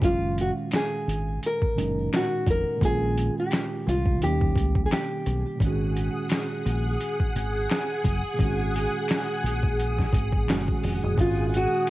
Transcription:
0.00 F#1 A#2 D#3 G#3 C#4, kick, closed hi-hat
0.04 F4 F5
0.38 F#4, closed hi-hat
0.71 finger snap, snare, closed hi-hat
0.74 G#4, finger snap
1.07 G#1, closed hi-hat
1.43 A#4, closed hi-hat
1.62 kick
1.73 A2 D#3 G#3
1.78 F#1 A#2 C#4 D#4, closed hi-hat
2.13 finger snap, snare, closed hi-hat
2.14 F#4, finger snap
2.46 F1 A#4, kick, closed hi-hat
2.77 A#2 D#3
2.81 A#1 G#3 C#4 G#4, kick, closed hi-hat
2.87 F4
3.18 closed hi-hat
3.40 G4
3.51 finger snap, snare, closed hi-hat
3.54 finger snap
3.87 C2 F4, closed hi-hat
4.06 kick
4.15 B2 D#3
4.21 D#2 F#3 A#3 G4, closed hi-hat
4.26 G3 C#4
4.41 kick
4.55 C#2, kick, closed hi-hat
4.75 kick
4.86 G#4
4.91 G4, finger snap, snare, closed hi-hat
4.93 finger snap
5.26 B1, closed hi-hat
5.56 A#2 D#3
5.60 G#1 G#3 C#4 G#4 F#5 D#6, kick, closed hi-hat
5.67 F#4
5.97 closed hi-hat
6.29 finger snap, snare, closed hi-hat
6.33 finger snap
6.66 A#1, closed hi-hat
7.00 closed hi-hat
7.20 kick
7.35 G#1, closed hi-hat
7.69 finger snap, snare, closed hi-hat
7.72 finger snap
8.04 F#1, kick, closed hi-hat
8.34 A#2 D#3
8.39 G#1 G#3 C#4, kick, closed hi-hat
8.45 F#4
8.76 closed hi-hat
9.08 finger snap, snare, closed hi-hat
9.12 finger snap
9.44 A#1, closed hi-hat
9.63 kick
9.80 closed hi-hat
9.99 kick, snare
10.13 G#1, kick, closed hi-hat
10.33 kick
10.45 A#2 D#3 G#3, finger snap
10.49 F#1 C#4 F#4, finger snap, snare, closed hi-hat
10.68 kick
10.84 F1, open hi-hat
11.03 F#1
11.11 A#2 D#3
11.16 G#1 G#3 C#4 G#4 F#5 G#5 D#6, kick, closed hi-hat
11.20 F4 F#4
11.49 F4
11.54 F#4, closed hi-hat

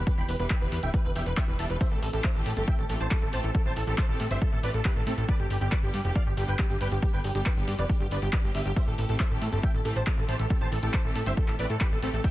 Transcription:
0.07 E3 G3 B3 G4 B4, kick, closed hi-hat
0.18 E1 G5 B5
0.29 E1 B4, open hi-hat
0.39 E1 E3 G3 B3 G4 B4, closed hi-hat
0.50 G5 B5, kick, clap, closed hi-hat
0.61 E1 E3 G3 B3 G4 B4
0.72 E2 B4, open hi-hat
0.83 D1 E3 G3 B3 G4 E5 G5, closed hi-hat
0.94 B4, kick, closed hi-hat
1.05 E1 B4
1.15 E1 E3 G3 B3 G4 E5 G5, open hi-hat
1.26 E1 B4, closed hi-hat
1.37 E3 G3 B3 G4 E5 G5, kick, clap, closed hi-hat
1.48 E1 B4
1.59 E1 E3 G3 B3 G4 E5 A5, open hi-hat
1.70 E1 B4, closed hi-hat
1.81 E3 A3 C4 G4 C5 E5, kick, closed hi-hat
1.92 A1 A4
2.02 A1 A4, open hi-hat
2.13 A1 E3 A3 C4 G4 A4, closed hi-hat
2.24 C5 E5, kick, clap, closed hi-hat
2.35 A1 E3 A3 C4 G4 A4
2.46 A2 A4, open hi-hat
2.57 G1 E3 A3 C4 G4 A4, closed hi-hat
2.68 E5 G5, kick, closed hi-hat
2.79 A1 A4
2.89 A1 E3 A3 C4 G4 A4, open hi-hat
3.00 A1 C5 A5, closed hi-hat
3.11 E3 A3 C4 G4 A4, kick, clap, closed hi-hat
3.22 A1 A4
3.33 A1 E3 A3 C4 G4 C5 A5, open hi-hat
3.44 A1 A4, closed hi-hat
3.55 E3 A3 C4 G4 A4, kick, closed hi-hat
3.66 A1 C5 A5
3.76 A1 A4, open hi-hat
3.87 A1 E3 A3 C4 G4 A4, closed hi-hat
3.98 C5 A5, kick, clap, closed hi-hat
4.09 A1 E3 A3 C4 G4 A4
4.20 A2 A4, open hi-hat
4.31 G1 E3 A3 C4 G4 C5 E5, closed hi-hat
4.42 A4, kick, closed hi-hat
4.52 A1 A4
4.63 A1 E3 A3 C4 G4 B4 D5, open hi-hat
4.74 A1 A4, closed hi-hat
4.85 E3 A3 C4 G4 B4, kick, clap, closed hi-hat
4.96 A1 A4
5.07 A2 E3 A3 C4 G4 A4, open hi-hat
5.18 A1 A4, closed hi-hat
5.29 D3 G3 B3 G4 B4 D5, kick, closed hi-hat
5.39 G1 G4
5.50 G1 G4, open hi-hat
5.61 G1 D3 G3 B3 G4, closed hi-hat
5.72 B4 D5, kick, clap, closed hi-hat
5.83 G1 D3 G3 B3 G4
5.94 G2 G4, open hi-hat
6.05 F1 D3 G3 B3 G4, closed hi-hat
6.15 D5 F5, kick, closed hi-hat
6.26 G1 G4
6.37 G1 D3 G3 B3 G4, open hi-hat
6.48 G1 B4 G5, closed hi-hat
6.59 D3 G3 B3 G4, kick, clap, closed hi-hat
6.70 G1 G4
6.81 G1 D3 G3 B3 G4 B4 G5, open hi-hat
6.92 G1 G4, closed hi-hat
7.02 D3 G3 B3 G4, kick, closed hi-hat
7.13 G1 B4 G5
7.24 G1 G4, open hi-hat
7.35 G1 D3 G3 B3 G4, closed hi-hat
7.46 B4 G5, kick, clap, closed hi-hat
7.57 G1 D3 G3 B3 G4
7.68 G2 G4, open hi-hat
7.79 F1 D3 G3 B3 G4 B4 D5, closed hi-hat
7.89 G4, kick, closed hi-hat
8.00 G1 G4
8.11 G1 D3 G3 B3 G4 B4 D5, open hi-hat
8.22 G1 G4, closed hi-hat
8.33 D3 G3 B3 G4 B4 D5, kick, clap, closed hi-hat
8.44 G1 G4
8.55 G1 D3 G3 B3 G4 E5, open hi-hat
8.66 G1 G4, closed hi-hat
8.76 E3 A3 C4 G4 C5 E5, kick, closed hi-hat
8.87 A1 A4
8.98 A1 A4, open hi-hat
9.09 A1 E3 A3 C4 G4 A4, closed hi-hat
9.20 C5 E5, kick, clap, closed hi-hat
9.31 A1 E3 A3 C4 G4 A4
9.42 A2 A4, open hi-hat
9.52 G1 E3 A3 C4 G4 A4, closed hi-hat
9.63 E5 G5, kick, closed hi-hat
9.74 A1 A4
9.85 A1 E3 A3 C4 G4 A4, open hi-hat
9.96 A1 C5 A5, closed hi-hat
10.07 E3 A3 C4 G4 A4, kick, clap, closed hi-hat
10.18 A1 A4
10.29 A1 E3 A3 C4 G4 C5 A5, open hi-hat
10.39 A1 A4, closed hi-hat
10.50 E3 A3 C4 G4 A4, kick, closed hi-hat
10.61 A1 C5 A5
10.72 A1 A4, open hi-hat
10.83 A1 E3 A3 C4 G4 A4, closed hi-hat
10.94 C5 A5, kick, clap, closed hi-hat
11.05 A1 E3 A3 C4 G4 A4
11.15 A2 A4, open hi-hat
11.26 G1 E3 A3 C4 G4 C5 E5, closed hi-hat
11.37 A4, kick, closed hi-hat
11.48 A1 A4, clap
11.59 A1 E3 A3 C4 G4 B4 D5, open hi-hat
11.70 A2 A4, closed hi-hat
11.81 E3 A3 C4 G4 B4, kick, clap, closed hi-hat
11.92 A1 A4
12.02 A1 E3 A3 C4 G4 A4, open hi-hat
12.13 A1 A4, closed hi-hat
12.24 E3 G3 B3 G4 E5 G5, kick, closed hi-hat, crash

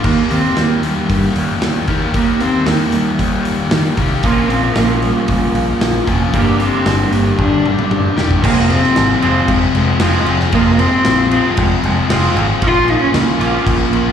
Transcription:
0.04 D#2 D#3 G3 A#3 G4 A#4, kick, crash
0.31 D#2 C4, open hi-hat
0.57 D#2 A#3, snare, open hi-hat
0.83 G3, open hi-hat
1.10 G2, kick, open hi-hat
1.36 D#2, open hi-hat
1.62 D#2, snare, open hi-hat
1.88 D#2 D#3 G3 A#3 G4 A#4, kick, open hi-hat
2.14 D#2 D#3 G3 A#3 G4 A#4, kick, open hi-hat
2.40 C4, open hi-hat
2.66 D#2 A#3, snare, open hi-hat
2.92 D#2 G3, open hi-hat
3.19 D#2, kick, open hi-hat
3.45 open hi-hat
3.71 D#3, snare, open hi-hat
3.97 C2 D#3 G3 A#3 G4 A#4, kick, open hi-hat
4.23 A#1 A#2 F3 A#3 C#4 F4 A#4, kick, open hi-hat
4.49 A#1 C4, open hi-hat
4.75 A#1 A#3, snare, open hi-hat
5.01 G3, open hi-hat
5.28 C#2, kick, open hi-hat
5.55 A#1, open hi-hat
5.81 A#1, snare, open hi-hat
6.07 F1 A#2 F3 A#3 C#4 F4 A#4, kick, open hi-hat
6.33 G1 G2 D3 G3 A#3 D4 G4 A#4, kick, open hi-hat
6.60 C4, open hi-hat
6.86 G1, snare, open hi-hat
7.11 G1 A#3, open hi-hat
7.37 G1 D4, kick, high tom
7.66 mid tom
7.79 mid tom
7.91 G2, mid tom
8.16 E1 G3 D4 G4 A#4, snare
8.31 kick
8.42 F1 F2 C3 F3 G#3 A#3 C4 F4, kick, crash
8.70 C4, crash
8.84 snare
8.95 G#1 F2 C3 F3 G#3 C4 F4, snare, crash
9.20 F1 F3 G#3 C4 F4, crash
9.47 F1 G#3, kick, crash
9.73 F1 F3 G#3 C4 F4, crash
10.00 F1 F3 G#3 C4 F4, snare, crash
10.26 F1 F3 G#3 C4 F4, crash
10.40 snare
10.52 F1 F2 C3 F3 G#3 A#3 C4 F4, kick, crash
10.79 C4, crash
11.05 A#1 F2 C3 F3 G#3 C4 F4, snare, crash
11.31 F3 G#3 C4 F4, crash
11.57 F1 G#3, kick, crash
11.83 F1 F3 G#3 C4 F4, crash
12.10 F1 F3 G#3 C4 F4, snare, crash
12.36 G#1 F3 G#3 C4 F4, crash
12.62 A#1 A#2 F3 A#3 C#4 F4, kick, crash
12.67 F4
12.88 D#4, crash
13.02 C#4
13.14 C#2 A#2 F3 A#3 C#4 F4, snare, crash
13.40 A#1 F3 A#3 C#4 F4, crash
13.54 G#3
13.66 A#1 A#3, kick, crash
13.92 A#1 A#3 C#4 F4, crash

